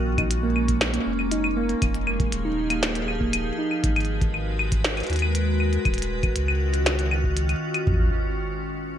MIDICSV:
0, 0, Header, 1, 5, 480
1, 0, Start_track
1, 0, Tempo, 504202
1, 1733, Time_signature, 4, 2, 24, 8
1, 8552, End_track
2, 0, Start_track
2, 0, Title_t, "Ambient pad"
2, 0, Program_c, 0, 92
2, 0, Note_on_c, 0, 56, 85
2, 0, Note_on_c, 0, 58, 73
2, 0, Note_on_c, 0, 61, 92
2, 1713, Note_off_c, 0, 56, 0
2, 1713, Note_off_c, 0, 58, 0
2, 1713, Note_off_c, 0, 61, 0
2, 1731, Note_on_c, 0, 67, 80
2, 1732, Note_on_c, 0, 53, 83
2, 1732, Note_on_c, 0, 63, 75
2, 1732, Note_on_c, 0, 68, 94
2, 3632, Note_off_c, 0, 67, 0
2, 3633, Note_off_c, 0, 53, 0
2, 3633, Note_off_c, 0, 63, 0
2, 3633, Note_off_c, 0, 68, 0
2, 3653, Note_on_c, 0, 66, 78
2, 3654, Note_on_c, 0, 56, 86
2, 3654, Note_on_c, 0, 70, 81
2, 3654, Note_on_c, 0, 71, 92
2, 5554, Note_off_c, 0, 56, 0
2, 5554, Note_off_c, 0, 66, 0
2, 5554, Note_off_c, 0, 70, 0
2, 5554, Note_off_c, 0, 71, 0
2, 5573, Note_on_c, 0, 51, 80
2, 5573, Note_on_c, 0, 66, 93
2, 5574, Note_on_c, 0, 61, 77
2, 5574, Note_on_c, 0, 65, 74
2, 7473, Note_off_c, 0, 51, 0
2, 7474, Note_off_c, 0, 61, 0
2, 7474, Note_off_c, 0, 65, 0
2, 7474, Note_off_c, 0, 66, 0
2, 8552, End_track
3, 0, Start_track
3, 0, Title_t, "Synth pluck"
3, 0, Program_c, 1, 84
3, 172, Note_on_c, 1, 63, 77
3, 257, Note_off_c, 1, 63, 0
3, 411, Note_on_c, 1, 58, 102
3, 463, Note_off_c, 1, 58, 0
3, 530, Note_on_c, 1, 58, 102
3, 645, Note_off_c, 1, 58, 0
3, 892, Note_on_c, 1, 58, 101
3, 978, Note_off_c, 1, 58, 0
3, 1252, Note_on_c, 1, 63, 81
3, 1338, Note_off_c, 1, 63, 0
3, 1492, Note_on_c, 1, 58, 100
3, 1543, Note_off_c, 1, 58, 0
3, 1611, Note_on_c, 1, 58, 100
3, 1726, Note_off_c, 1, 58, 0
3, 1971, Note_on_c, 1, 58, 96
3, 2057, Note_off_c, 1, 58, 0
3, 2332, Note_on_c, 1, 63, 77
3, 2417, Note_off_c, 1, 63, 0
3, 2571, Note_on_c, 1, 58, 99
3, 2623, Note_off_c, 1, 58, 0
3, 2691, Note_on_c, 1, 58, 96
3, 2805, Note_off_c, 1, 58, 0
3, 3051, Note_on_c, 1, 58, 105
3, 3137, Note_off_c, 1, 58, 0
3, 3411, Note_on_c, 1, 63, 77
3, 3497, Note_off_c, 1, 63, 0
3, 8552, End_track
4, 0, Start_track
4, 0, Title_t, "Sub bass"
4, 0, Program_c, 2, 38
4, 0, Note_on_c, 2, 34, 102
4, 946, Note_off_c, 2, 34, 0
4, 1012, Note_on_c, 2, 29, 87
4, 1666, Note_off_c, 2, 29, 0
4, 1732, Note_on_c, 2, 29, 87
4, 2146, Note_off_c, 2, 29, 0
4, 2213, Note_on_c, 2, 27, 90
4, 3346, Note_off_c, 2, 27, 0
4, 3652, Note_on_c, 2, 32, 94
4, 4786, Note_off_c, 2, 32, 0
4, 4853, Note_on_c, 2, 39, 85
4, 5506, Note_off_c, 2, 39, 0
4, 5573, Note_on_c, 2, 27, 88
4, 5986, Note_off_c, 2, 27, 0
4, 6054, Note_on_c, 2, 37, 87
4, 7187, Note_off_c, 2, 37, 0
4, 7492, Note_on_c, 2, 34, 99
4, 7715, Note_off_c, 2, 34, 0
4, 8552, End_track
5, 0, Start_track
5, 0, Title_t, "Drums"
5, 172, Note_on_c, 9, 36, 103
5, 172, Note_on_c, 9, 42, 37
5, 172, Note_on_c, 9, 75, 83
5, 267, Note_off_c, 9, 36, 0
5, 267, Note_off_c, 9, 42, 0
5, 267, Note_off_c, 9, 75, 0
5, 292, Note_on_c, 9, 42, 88
5, 387, Note_off_c, 9, 42, 0
5, 531, Note_on_c, 9, 75, 54
5, 626, Note_off_c, 9, 75, 0
5, 652, Note_on_c, 9, 36, 79
5, 652, Note_on_c, 9, 42, 52
5, 747, Note_off_c, 9, 36, 0
5, 747, Note_off_c, 9, 42, 0
5, 771, Note_on_c, 9, 38, 116
5, 771, Note_on_c, 9, 42, 79
5, 771, Note_on_c, 9, 75, 77
5, 867, Note_off_c, 9, 38, 0
5, 867, Note_off_c, 9, 42, 0
5, 867, Note_off_c, 9, 75, 0
5, 892, Note_on_c, 9, 42, 56
5, 987, Note_off_c, 9, 42, 0
5, 1132, Note_on_c, 9, 75, 54
5, 1227, Note_off_c, 9, 75, 0
5, 1252, Note_on_c, 9, 42, 85
5, 1347, Note_off_c, 9, 42, 0
5, 1371, Note_on_c, 9, 75, 76
5, 1467, Note_off_c, 9, 75, 0
5, 1612, Note_on_c, 9, 42, 36
5, 1707, Note_off_c, 9, 42, 0
5, 1731, Note_on_c, 9, 36, 118
5, 1732, Note_on_c, 9, 42, 80
5, 1732, Note_on_c, 9, 75, 50
5, 1827, Note_off_c, 9, 36, 0
5, 1827, Note_off_c, 9, 42, 0
5, 1827, Note_off_c, 9, 75, 0
5, 1851, Note_on_c, 9, 42, 41
5, 1947, Note_off_c, 9, 42, 0
5, 1971, Note_on_c, 9, 75, 80
5, 2066, Note_off_c, 9, 75, 0
5, 2091, Note_on_c, 9, 36, 112
5, 2092, Note_on_c, 9, 42, 39
5, 2187, Note_off_c, 9, 36, 0
5, 2188, Note_off_c, 9, 42, 0
5, 2212, Note_on_c, 9, 42, 83
5, 2307, Note_off_c, 9, 42, 0
5, 2573, Note_on_c, 9, 42, 55
5, 2573, Note_on_c, 9, 75, 80
5, 2668, Note_off_c, 9, 42, 0
5, 2668, Note_off_c, 9, 75, 0
5, 2692, Note_on_c, 9, 38, 117
5, 2692, Note_on_c, 9, 42, 84
5, 2787, Note_off_c, 9, 38, 0
5, 2787, Note_off_c, 9, 42, 0
5, 2812, Note_on_c, 9, 42, 56
5, 2907, Note_off_c, 9, 42, 0
5, 2932, Note_on_c, 9, 75, 53
5, 3028, Note_off_c, 9, 75, 0
5, 3051, Note_on_c, 9, 36, 86
5, 3147, Note_off_c, 9, 36, 0
5, 3172, Note_on_c, 9, 42, 84
5, 3172, Note_on_c, 9, 75, 80
5, 3267, Note_off_c, 9, 42, 0
5, 3267, Note_off_c, 9, 75, 0
5, 3533, Note_on_c, 9, 75, 52
5, 3628, Note_off_c, 9, 75, 0
5, 3652, Note_on_c, 9, 36, 116
5, 3653, Note_on_c, 9, 42, 78
5, 3747, Note_off_c, 9, 36, 0
5, 3748, Note_off_c, 9, 42, 0
5, 3773, Note_on_c, 9, 42, 18
5, 3773, Note_on_c, 9, 75, 80
5, 3813, Note_off_c, 9, 42, 0
5, 3813, Note_on_c, 9, 42, 24
5, 3853, Note_off_c, 9, 42, 0
5, 3853, Note_on_c, 9, 42, 31
5, 3868, Note_off_c, 9, 75, 0
5, 3948, Note_off_c, 9, 42, 0
5, 4012, Note_on_c, 9, 36, 113
5, 4013, Note_on_c, 9, 42, 38
5, 4107, Note_off_c, 9, 36, 0
5, 4108, Note_off_c, 9, 42, 0
5, 4132, Note_on_c, 9, 75, 52
5, 4227, Note_off_c, 9, 75, 0
5, 4372, Note_on_c, 9, 75, 76
5, 4468, Note_off_c, 9, 75, 0
5, 4492, Note_on_c, 9, 36, 88
5, 4492, Note_on_c, 9, 42, 54
5, 4587, Note_off_c, 9, 36, 0
5, 4587, Note_off_c, 9, 42, 0
5, 4612, Note_on_c, 9, 38, 122
5, 4612, Note_on_c, 9, 42, 80
5, 4708, Note_off_c, 9, 38, 0
5, 4708, Note_off_c, 9, 42, 0
5, 4733, Note_on_c, 9, 42, 24
5, 4733, Note_on_c, 9, 75, 51
5, 4762, Note_off_c, 9, 42, 0
5, 4762, Note_on_c, 9, 42, 28
5, 4793, Note_off_c, 9, 42, 0
5, 4793, Note_on_c, 9, 42, 31
5, 4822, Note_off_c, 9, 42, 0
5, 4822, Note_on_c, 9, 42, 35
5, 4828, Note_off_c, 9, 75, 0
5, 4852, Note_off_c, 9, 42, 0
5, 4852, Note_on_c, 9, 42, 37
5, 4882, Note_off_c, 9, 42, 0
5, 4882, Note_on_c, 9, 42, 42
5, 4912, Note_off_c, 9, 42, 0
5, 4912, Note_on_c, 9, 42, 45
5, 4941, Note_off_c, 9, 42, 0
5, 4941, Note_on_c, 9, 42, 47
5, 4972, Note_on_c, 9, 75, 80
5, 5037, Note_off_c, 9, 42, 0
5, 5067, Note_off_c, 9, 75, 0
5, 5092, Note_on_c, 9, 42, 81
5, 5187, Note_off_c, 9, 42, 0
5, 5332, Note_on_c, 9, 75, 50
5, 5427, Note_off_c, 9, 75, 0
5, 5452, Note_on_c, 9, 42, 36
5, 5548, Note_off_c, 9, 42, 0
5, 5572, Note_on_c, 9, 36, 118
5, 5572, Note_on_c, 9, 42, 34
5, 5572, Note_on_c, 9, 75, 72
5, 5652, Note_off_c, 9, 42, 0
5, 5652, Note_on_c, 9, 42, 45
5, 5667, Note_off_c, 9, 75, 0
5, 5668, Note_off_c, 9, 36, 0
5, 5692, Note_off_c, 9, 42, 0
5, 5692, Note_on_c, 9, 42, 39
5, 5733, Note_off_c, 9, 42, 0
5, 5733, Note_on_c, 9, 42, 60
5, 5828, Note_off_c, 9, 42, 0
5, 5932, Note_on_c, 9, 36, 109
5, 5932, Note_on_c, 9, 42, 37
5, 5932, Note_on_c, 9, 75, 48
5, 6027, Note_off_c, 9, 36, 0
5, 6027, Note_off_c, 9, 42, 0
5, 6027, Note_off_c, 9, 75, 0
5, 6051, Note_on_c, 9, 42, 80
5, 6146, Note_off_c, 9, 42, 0
5, 6172, Note_on_c, 9, 75, 72
5, 6267, Note_off_c, 9, 75, 0
5, 6413, Note_on_c, 9, 42, 52
5, 6508, Note_off_c, 9, 42, 0
5, 6533, Note_on_c, 9, 38, 124
5, 6533, Note_on_c, 9, 42, 76
5, 6533, Note_on_c, 9, 75, 49
5, 6628, Note_off_c, 9, 38, 0
5, 6628, Note_off_c, 9, 42, 0
5, 6628, Note_off_c, 9, 75, 0
5, 6653, Note_on_c, 9, 42, 52
5, 6748, Note_off_c, 9, 42, 0
5, 6772, Note_on_c, 9, 75, 77
5, 6867, Note_off_c, 9, 75, 0
5, 6892, Note_on_c, 9, 36, 84
5, 6987, Note_off_c, 9, 36, 0
5, 7012, Note_on_c, 9, 42, 79
5, 7108, Note_off_c, 9, 42, 0
5, 7132, Note_on_c, 9, 42, 35
5, 7132, Note_on_c, 9, 75, 49
5, 7227, Note_off_c, 9, 42, 0
5, 7227, Note_off_c, 9, 75, 0
5, 7372, Note_on_c, 9, 42, 34
5, 7372, Note_on_c, 9, 75, 72
5, 7467, Note_off_c, 9, 42, 0
5, 7467, Note_off_c, 9, 75, 0
5, 7492, Note_on_c, 9, 36, 104
5, 7492, Note_on_c, 9, 43, 97
5, 7587, Note_off_c, 9, 36, 0
5, 7587, Note_off_c, 9, 43, 0
5, 8552, End_track
0, 0, End_of_file